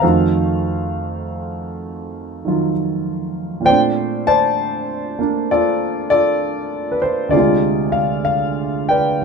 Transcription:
0, 0, Header, 1, 2, 480
1, 0, Start_track
1, 0, Key_signature, -2, "major"
1, 0, Tempo, 913242
1, 13, Time_signature, 4, 2, 24, 8
1, 3852, Tempo, 946372
1, 4824, End_track
2, 0, Start_track
2, 0, Title_t, "Grand piano"
2, 0, Program_c, 0, 0
2, 0, Control_c, 0, 64, 127
2, 0, Note_on_c, 0, 77, 70
2, 8, Note_on_c, 0, 72, 51
2, 12, Note_on_c, 0, 69, 47
2, 16, Note_on_c, 0, 41, 53
2, 19, Note_on_c, 0, 51, 45
2, 19, Note_on_c, 0, 57, 46
2, 20, Control_c, 0, 64, 0
2, 24, Note_on_c, 0, 66, 53
2, 124, Control_c, 0, 64, 127
2, 1278, Note_off_c, 0, 51, 0
2, 1286, Note_on_c, 0, 51, 38
2, 1296, Note_on_c, 0, 54, 36
2, 1303, Note_on_c, 0, 65, 43
2, 1418, Note_off_c, 0, 77, 0
2, 1426, Note_off_c, 0, 72, 0
2, 1428, Note_off_c, 0, 69, 0
2, 1895, Note_on_c, 0, 46, 44
2, 1906, Note_off_c, 0, 57, 0
2, 1914, Note_on_c, 0, 57, 39
2, 1921, Note_off_c, 0, 51, 0
2, 1921, Note_on_c, 0, 72, 65
2, 1922, Note_on_c, 0, 79, 94
2, 1924, Note_on_c, 0, 74, 63
2, 1926, Note_off_c, 0, 54, 0
2, 1927, Note_off_c, 0, 41, 0
2, 1930, Note_off_c, 0, 65, 0
2, 1931, Note_off_c, 0, 66, 0
2, 1932, Control_c, 0, 64, 0
2, 1935, Note_on_c, 0, 60, 41
2, 1950, Note_on_c, 0, 62, 53
2, 1995, Note_off_c, 0, 79, 0
2, 2036, Control_c, 0, 64, 127
2, 2240, Note_off_c, 0, 74, 0
2, 2241, Note_off_c, 0, 72, 0
2, 2245, Note_on_c, 0, 81, 110
2, 2248, Note_on_c, 0, 74, 68
2, 2249, Note_on_c, 0, 72, 66
2, 2727, Note_on_c, 0, 58, 46
2, 2731, Note_off_c, 0, 62, 0
2, 2739, Note_on_c, 0, 62, 48
2, 2889, Note_off_c, 0, 74, 0
2, 2897, Note_on_c, 0, 74, 77
2, 2900, Note_on_c, 0, 69, 55
2, 2901, Note_on_c, 0, 65, 62
2, 2910, Note_off_c, 0, 81, 0
2, 2969, Note_off_c, 0, 74, 0
2, 3194, Note_off_c, 0, 72, 0
2, 3202, Note_off_c, 0, 65, 0
2, 3203, Note_off_c, 0, 69, 0
2, 3207, Note_on_c, 0, 74, 91
2, 3210, Note_on_c, 0, 65, 53
2, 3211, Note_on_c, 0, 69, 56
2, 3634, Note_on_c, 0, 71, 51
2, 3657, Note_off_c, 0, 74, 0
2, 3689, Note_off_c, 0, 71, 0
2, 3689, Note_on_c, 0, 72, 70
2, 3830, Note_on_c, 0, 38, 49
2, 3831, Note_off_c, 0, 65, 0
2, 3832, Note_off_c, 0, 69, 0
2, 3840, Note_off_c, 0, 46, 0
2, 3840, Note_on_c, 0, 74, 74
2, 3847, Note_on_c, 0, 65, 60
2, 3847, Note_on_c, 0, 68, 54
2, 3848, Note_on_c, 0, 48, 46
2, 3849, Note_off_c, 0, 57, 0
2, 3852, Note_off_c, 0, 58, 0
2, 3856, Note_off_c, 0, 72, 0
2, 3858, Note_off_c, 0, 62, 0
2, 3860, Note_off_c, 0, 60, 0
2, 3862, Control_c, 0, 64, 0
2, 3871, Note_on_c, 0, 56, 43
2, 3878, Note_off_c, 0, 65, 0
2, 3885, Note_on_c, 0, 65, 54
2, 3948, Control_c, 0, 64, 127
2, 4153, Note_on_c, 0, 77, 81
2, 4174, Note_off_c, 0, 74, 0
2, 4310, Note_off_c, 0, 77, 0
2, 4318, Note_on_c, 0, 77, 80
2, 4629, Note_off_c, 0, 77, 0
2, 4642, Note_on_c, 0, 79, 74
2, 4649, Note_on_c, 0, 71, 50
2, 4652, Note_on_c, 0, 74, 52
2, 4790, Note_off_c, 0, 68, 0
2, 4803, Note_off_c, 0, 38, 0
2, 4811, Note_off_c, 0, 48, 0
2, 4821, Control_c, 0, 64, 0
2, 4823, Note_off_c, 0, 56, 0
2, 4824, Note_off_c, 0, 65, 0
2, 4824, Note_off_c, 0, 71, 0
2, 4824, Note_off_c, 0, 74, 0
2, 4824, Note_off_c, 0, 79, 0
2, 4824, End_track
0, 0, End_of_file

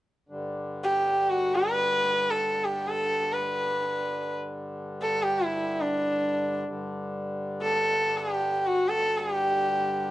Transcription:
0, 0, Header, 1, 3, 480
1, 0, Start_track
1, 0, Tempo, 500000
1, 9705, End_track
2, 0, Start_track
2, 0, Title_t, "Sarangi"
2, 0, Program_c, 0, 110
2, 800, Note_on_c, 0, 67, 69
2, 1242, Note_on_c, 0, 66, 69
2, 1257, Note_off_c, 0, 67, 0
2, 1492, Note_on_c, 0, 71, 83
2, 1507, Note_off_c, 0, 66, 0
2, 2206, Note_on_c, 0, 69, 69
2, 2221, Note_off_c, 0, 71, 0
2, 2539, Note_on_c, 0, 67, 62
2, 2553, Note_off_c, 0, 69, 0
2, 2766, Note_on_c, 0, 69, 72
2, 2780, Note_off_c, 0, 67, 0
2, 3194, Note_on_c, 0, 71, 62
2, 3209, Note_off_c, 0, 69, 0
2, 4160, Note_off_c, 0, 71, 0
2, 4816, Note_on_c, 0, 69, 66
2, 5015, Note_on_c, 0, 67, 76
2, 5029, Note_off_c, 0, 69, 0
2, 5228, Note_on_c, 0, 64, 65
2, 5242, Note_off_c, 0, 67, 0
2, 5569, Note_on_c, 0, 62, 59
2, 5583, Note_off_c, 0, 64, 0
2, 6344, Note_off_c, 0, 62, 0
2, 7318, Note_on_c, 0, 69, 77
2, 7848, Note_on_c, 0, 67, 66
2, 7862, Note_off_c, 0, 69, 0
2, 8314, Note_on_c, 0, 66, 67
2, 8328, Note_off_c, 0, 67, 0
2, 8525, Note_on_c, 0, 69, 76
2, 8539, Note_off_c, 0, 66, 0
2, 8810, Note_on_c, 0, 67, 68
2, 8824, Note_off_c, 0, 69, 0
2, 9705, Note_off_c, 0, 67, 0
2, 9705, End_track
3, 0, Start_track
3, 0, Title_t, "Harmonium"
3, 0, Program_c, 1, 20
3, 278, Note_on_c, 1, 50, 55
3, 285, Note_on_c, 1, 43, 55
3, 6374, Note_off_c, 1, 43, 0
3, 6374, Note_off_c, 1, 50, 0
3, 6389, Note_on_c, 1, 43, 57
3, 6389, Note_on_c, 1, 50, 60
3, 9705, Note_off_c, 1, 43, 0
3, 9705, Note_off_c, 1, 50, 0
3, 9705, End_track
0, 0, End_of_file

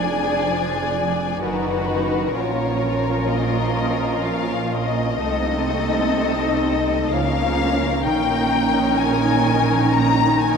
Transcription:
0, 0, Header, 1, 6, 480
1, 0, Start_track
1, 0, Tempo, 977199
1, 703, Tempo, 949367
1, 1180, Time_signature, 3, 2, 24, 8
1, 3103, Tempo, 934579
1, 5360, End_track
2, 0, Start_track
2, 0, Title_t, "Violin section"
2, 0, Program_c, 0, 48
2, 0, Note_on_c, 0, 80, 55
2, 697, Note_on_c, 0, 71, 55
2, 699, Note_off_c, 0, 80, 0
2, 1168, Note_off_c, 0, 71, 0
2, 1174, Note_on_c, 0, 73, 49
2, 1642, Note_on_c, 0, 75, 56
2, 1649, Note_off_c, 0, 73, 0
2, 2129, Note_on_c, 0, 77, 59
2, 2133, Note_off_c, 0, 75, 0
2, 2371, Note_on_c, 0, 75, 67
2, 2375, Note_off_c, 0, 77, 0
2, 3584, Note_off_c, 0, 75, 0
2, 3586, Note_on_c, 0, 77, 76
2, 4059, Note_on_c, 0, 79, 79
2, 4069, Note_off_c, 0, 77, 0
2, 4529, Note_off_c, 0, 79, 0
2, 4536, Note_on_c, 0, 80, 75
2, 5022, Note_off_c, 0, 80, 0
2, 5024, Note_on_c, 0, 82, 82
2, 5265, Note_off_c, 0, 82, 0
2, 5265, Note_on_c, 0, 80, 72
2, 5360, Note_off_c, 0, 80, 0
2, 5360, End_track
3, 0, Start_track
3, 0, Title_t, "Violin section"
3, 0, Program_c, 1, 48
3, 0, Note_on_c, 1, 68, 41
3, 0, Note_on_c, 1, 74, 38
3, 681, Note_off_c, 1, 68, 0
3, 681, Note_off_c, 1, 74, 0
3, 701, Note_on_c, 1, 66, 42
3, 704, Note_on_c, 1, 70, 43
3, 1159, Note_off_c, 1, 66, 0
3, 1181, Note_on_c, 1, 65, 43
3, 2601, Note_off_c, 1, 65, 0
3, 2601, Note_off_c, 1, 70, 0
3, 2618, Note_on_c, 1, 69, 49
3, 2620, Note_on_c, 1, 63, 47
3, 3566, Note_off_c, 1, 69, 0
3, 3567, Note_off_c, 1, 63, 0
3, 3588, Note_on_c, 1, 61, 52
3, 3590, Note_on_c, 1, 70, 56
3, 4049, Note_off_c, 1, 61, 0
3, 4072, Note_on_c, 1, 63, 54
3, 5360, Note_off_c, 1, 63, 0
3, 5360, Note_off_c, 1, 70, 0
3, 5360, End_track
4, 0, Start_track
4, 0, Title_t, "Viola section"
4, 0, Program_c, 2, 48
4, 0, Note_on_c, 2, 53, 42
4, 0, Note_on_c, 2, 62, 39
4, 684, Note_off_c, 2, 53, 0
4, 684, Note_off_c, 2, 62, 0
4, 701, Note_on_c, 2, 63, 41
4, 703, Note_on_c, 2, 51, 42
4, 1159, Note_off_c, 2, 63, 0
4, 1160, Note_off_c, 2, 51, 0
4, 1181, Note_on_c, 2, 53, 46
4, 1181, Note_on_c, 2, 61, 43
4, 2601, Note_off_c, 2, 53, 0
4, 2601, Note_off_c, 2, 61, 0
4, 2622, Note_on_c, 2, 57, 49
4, 2623, Note_on_c, 2, 60, 53
4, 3568, Note_off_c, 2, 57, 0
4, 3569, Note_off_c, 2, 60, 0
4, 3591, Note_on_c, 2, 58, 49
4, 3592, Note_on_c, 2, 53, 51
4, 4051, Note_off_c, 2, 53, 0
4, 4051, Note_off_c, 2, 58, 0
4, 4070, Note_on_c, 2, 51, 57
4, 4072, Note_on_c, 2, 61, 61
4, 5360, Note_off_c, 2, 51, 0
4, 5360, Note_off_c, 2, 61, 0
4, 5360, End_track
5, 0, Start_track
5, 0, Title_t, "Cello section"
5, 0, Program_c, 3, 48
5, 0, Note_on_c, 3, 41, 38
5, 681, Note_off_c, 3, 41, 0
5, 704, Note_on_c, 3, 42, 42
5, 1181, Note_off_c, 3, 42, 0
5, 1181, Note_on_c, 3, 46, 42
5, 2601, Note_off_c, 3, 46, 0
5, 2624, Note_on_c, 3, 48, 52
5, 3570, Note_off_c, 3, 48, 0
5, 3591, Note_on_c, 3, 49, 49
5, 4062, Note_off_c, 3, 49, 0
5, 4073, Note_on_c, 3, 46, 55
5, 5360, Note_off_c, 3, 46, 0
5, 5360, End_track
6, 0, Start_track
6, 0, Title_t, "Double bass section"
6, 0, Program_c, 4, 48
6, 0, Note_on_c, 4, 29, 38
6, 685, Note_off_c, 4, 29, 0
6, 707, Note_on_c, 4, 30, 42
6, 1182, Note_off_c, 4, 30, 0
6, 1182, Note_on_c, 4, 34, 42
6, 2601, Note_off_c, 4, 34, 0
6, 2625, Note_on_c, 4, 36, 46
6, 3571, Note_off_c, 4, 36, 0
6, 3589, Note_on_c, 4, 37, 47
6, 4061, Note_off_c, 4, 37, 0
6, 4075, Note_on_c, 4, 34, 51
6, 5360, Note_off_c, 4, 34, 0
6, 5360, End_track
0, 0, End_of_file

